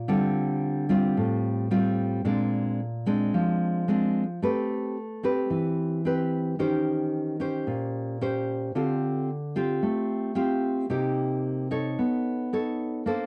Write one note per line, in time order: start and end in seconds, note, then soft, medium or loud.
0.08 1.14 D3 medium
0.08 0.86 G3 soft
0.08 0.86 C4 soft
0.08 0.86 F4 soft
0.89 1.67 G3 medium
0.89 1.67 C4 medium
0.89 1.67 F4 medium
1.17 2.23 A2 medium
1.71 2.21 G3 soft
1.71 2.21 C4 medium
1.71 2.21 F4 medium
2.25 3.31 A#2 medium
2.25 2.79 G#3 soft
2.25 2.79 C4 soft
2.25 2.79 D4 medium
3.06 3.83 G#3 medium
3.06 3.84 C4 soft
3.06 3.84 D4 medium
3.34 4.39 F3 medium
3.88 4.23 G#3 soft
3.88 4.23 C4 medium
3.88 4.23 D4 soft
4.42 5.48 A3 medium
4.42 4.96 C4 soft
4.42 4.96 G4 soft
4.42 4.96 B4 soft
5.23 6.00 C4 soft
5.23 6.00 G4 soft
5.23 6.00 B4 soft
5.50 6.56 E3 medium
6.05 6.54 C4 medium
6.05 6.55 G4 soft
6.05 6.55 B4 medium
6.59 7.64 D#3 medium
6.59 7.35 C#4 medium
6.59 7.36 G4 soft
6.59 7.36 C5 soft
7.40 8.16 C#4 soft
7.40 8.17 G4 soft
7.40 8.17 C5 medium
7.67 8.72 A#2 medium
8.21 8.71 C#4 medium
8.21 8.71 G4 soft
8.21 8.71 C5 medium
8.75 9.80 D3 medium
8.75 9.29 C4 soft
8.75 9.29 F4 soft
8.75 9.29 G4 soft
9.56 10.33 C4 soft
9.56 10.33 F4 medium
9.56 10.33 G4 medium
9.83 10.88 A3 medium
10.35 10.86 C4 soft
10.35 10.86 F4 medium
10.35 10.86 G4 medium
10.90 11.96 C3 medium
10.90 11.67 A#3 soft
10.90 11.67 D#4 soft
10.90 11.68 G4 medium
11.71 12.48 D#4 soft
11.71 12.49 A4 soft
11.71 12.49 C#5 medium
11.99 13.04 B3 medium
12.53 13.03 D#4 soft
12.53 13.03 A4 soft
12.53 13.03 C#5 medium
13.06 13.26 A#3 medium
13.06 13.26 D4 medium
13.06 13.26 A4 soft
13.06 13.26 C5 medium